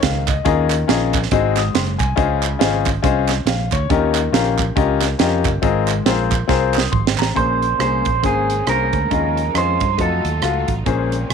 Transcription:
Already playing: D#3
0.02 C#2 F5, kick, snare, closed hi-hat
0.28 D#5, kick, clap, closed hi-hat
0.45 D#2 D#3 C#4 F4 G#4 A#4 D#5, kick, closed hi-hat
0.70 clap, closed hi-hat
0.88 A#1 C#4 F4 G#4 A#4 D#5, snare, closed hi-hat
1.13 kick, clap, closed hi-hat
1.23 snare
1.31 G#1 G#2 C4 D#4 F#4 G#4 D#5, kick, closed hi-hat
1.57 D#6, snare, clap, closed hi-hat
1.74 F#1 C6, snare, closed hi-hat
1.99 C2 G#5, kick, clap, closed hi-hat
2.16 C#2 C#3 C#4 F4 G#4 C5 D#5, kick, closed hi-hat
2.43 clap, closed hi-hat
2.59 G#1 C#4 F4 G#4 C5 D#5, snare, closed hi-hat
2.86 kick, clap, closed hi-hat
3.02 C2 C#4 F4 G#4 C5 D#5, kick, closed hi-hat
3.29 snare, clap, closed hi-hat
3.46 A#1 F5, snare, closed hi-hat
3.72 D2 C#5, kick, clap, closed hi-hat
3.90 D#2 D#3 C#4 F4 G4 A#4 D#5, kick, closed hi-hat
4.15 clap, closed hi-hat
4.32 A#1 C#4 F4 G4 A#4 F5, snare, closed hi-hat
4.58 kick, clap, closed hi-hat
4.76 C#2 C#4 F4 G4 A#4 D#5, kick, closed hi-hat
5.02 snare, clap, closed hi-hat
5.19 F2 C#4 F4 G4 A#4 D#5, snare, closed hi-hat
5.45 G1, kick, clap, closed hi-hat
5.62 G#1 G#2 C4 F4 G#4 A#4 D#5, kick, closed hi-hat
5.88 clap, closed hi-hat
6.06 A#1 C4 F4 G#4 A#4 C5, snare, closed hi-hat
6.31 kick, clap, closed hi-hat
6.48 C2 C4 F4 G#4 A#4 C5, kick, snare
6.74 D#6, snare, clap
6.92 G#1 C6, kick, mid tom
7.07 snare
7.18 A1 A#5, snare, clap
7.35 A#1 A#2 G#3 A#3 C4 C#4 G#4 C5, kick, closed hi-hat
7.62 closed hi-hat
7.79 C2 A#3 C#4 G#4 C5, cross-stick, closed hi-hat
8.05 A#1, kick, closed hi-hat
8.23 G#1 A#3 C#4 G#4 C5, kick, closed hi-hat
8.50 closed hi-hat
8.67 C2 A#3 C#4 G#4 A#4 C5, cross-stick, closed hi-hat
8.93 D2, kick, closed hi-hat
9.10 D#2 D#3 F3 C#4 D#4 F4 G#4 D#5, kick, closed hi-hat
9.37 closed hi-hat
9.54 F2 C#4 F4 G#4 C5 D#5, cross-stick, closed hi-hat
9.80 G2, kick, closed hi-hat
9.98 F2 F#3 A3 F4 F#4 A4 D#5, kick, closed hi-hat
10.24 D#2, closed hi-hat
10.42 C#2 A3 F4 F#4 F5, cross-stick, closed hi-hat
10.68 A1, kick, closed hi-hat
10.85 A#1 A#2 G#3 A#3 C4 C#4 G#4 C5, kick, closed hi-hat
11.12 closed hi-hat
11.30 C2, cross-stick, closed hi-hat

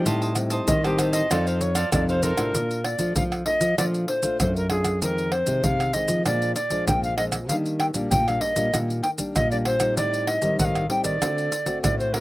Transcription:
Already playing: G3 C4 D#4
0.05 A2 G4 C5 D#5 A5, pandeiro, maracas, surdo
0.22 C5 D#5 A5, pandeiro, maracas
0.35 G3 C4 D#4, muted cavaquinho stroke, pandeiro, tamborim, maracas
0.50 C5 D#5 A5, pandeiro, maracas
0.68 A2 D#3 D#5, pandeiro, maracas, surdo
0.84 G3 C4 D#4 G4 C5 D#5 A5, pandeiro, tamborim, maracas
0.98 G4 C5 D#5 A5, pandeiro, tamborim, maracas
1.13 C5 D#5 A5, pandeiro, maracas
1.30 F2 F3 C4 D#4 A4 C5 D5 F5, pandeiro, tamborim, maracas, surdo
1.47 A4 C5 F5, pandeiro, maracas
1.61 C#5, pandeiro, maracas
1.75 A4 C5 D5 F5, pandeiro, tamborim, maracas
1.92 F2 C3 C4 D#4 A4 D5, pandeiro, tamborim, maracas, surdo
2.09 A4 C5 F5, pandeiro, maracas
2.23 C4 D#4 A4 A#4 C5 F5, pandeiro, maracas
2.38 A2 D4 F4, pandeiro, tamborim, maracas
2.55 A#2, pandeiro, maracas, surdo
2.71 pandeiro, maracas
2.84 D5, pandeiro, tamborim
2.99 F3 A3 D4 F4, pandeiro, maracas, surdo
3.16 F2 F3 F5, pandeiro, maracas, surdo
3.32 pandeiro, tamborim, maracas
3.46 A3 D4 F4 D#5, pandeiro
3.61 F3, pandeiro, maracas, surdo
3.78 A#2 F3 A3 D4 F4 D5, pandeiro, tamborim, maracas, surdo
3.94 pandeiro, maracas
4.08 C5, pandeiro
4.23 A3 D4 F4, pandeiro, maracas, surdo
4.40 F#2 C5, pandeiro, tamborim, maracas, surdo
4.56 A#4, pandeiro, maracas
4.70 A3 D4 F4 G#4, pandeiro, tamborim
4.85 pandeiro, tamborim, maracas, surdo
5.02 F2 D#3 G#3 C4 A#4, pandeiro, maracas, surdo
5.18 pandeiro, maracas
5.32 C5, pandeiro, tamborim
5.47 C3 D#3 G#3 C4, pandeiro, maracas, surdo
5.64 C3 F5, pandeiro, maracas, surdo
5.80 pandeiro, tamborim, maracas
5.93 D#3 G#3 C4 D#5, pandeiro, maracas, surdo
6.08 F3, pandeiro, maracas, surdo
6.26 A#2 F3 G#3 D4 D5, pandeiro, tamborim, maracas, surdo
6.42 pandeiro, maracas
6.55 D5, pandeiro, maracas
6.70 F3 G#3 D4, pandeiro, maracas, surdo
6.88 F2 A#2 G5, pandeiro, tamborim, maracas, surdo
7.04 F5, pandeiro, maracas
7.17 F3 G#3 D4 D#5, pandeiro, tamborim
7.32 pandeiro, tamborim, maracas, surdo
7.49 D#3 G3 A#3 D4 F5, pandeiro, maracas, surdo
7.66 pandeiro, maracas
7.79 G5, pandeiro, tamborim
7.94 A#2 G3 A#3 D4, pandeiro, maracas, surdo
8.11 A#2 G5, pandeiro, maracas, surdo
8.28 G3 A#3 D4 F5, pandeiro, tamborim, maracas
8.41 D#5, pandeiro
8.56 A#2 G3 A#3 D4, pandeiro, maracas, surdo
8.73 A#2 D#3 G3 A#3 D4, pandeiro, tamborim, maracas, surdo
8.90 pandeiro, maracas
9.03 G5, pandeiro
9.18 G3 A#3 D4, pandeiro, maracas, surdo
9.35 A#2 D#5, pandeiro, tamborim, maracas, surdo
9.51 G3 A#3 D4 D5, pandeiro, maracas
9.65 C5, pandeiro, tamborim
9.80 G3 C4 D#4, pandeiro, tamborim, maracas, surdo
9.97 A2 D5, pandeiro, maracas, surdo
10.14 pandeiro, maracas
10.27 D#5, pandeiro, tamborim
10.42 D#3 G3 C4 D#4, pandeiro, maracas, surdo
10.59 A2 D#3 F#5, pandeiro, maracas, surdo
10.65 F5
10.75 pandeiro, tamborim, maracas
10.90 G3 C4 D#4 G5, pandeiro, surdo
11.04 D#3 D5, pandeiro, maracas, surdo
11.21 D3 A3 C4 F#4, pandeiro, tamborim, maracas, surdo
11.38 pandeiro, maracas
11.52 pandeiro, maracas
11.66 A3 C4 F#4, pandeiro, maracas, surdo
11.83 A2 D5, pandeiro, tamborim, maracas, surdo
11.99 C5, pandeiro, maracas
12.13 A3 C4 F#4 A#4, pandeiro, tamborim

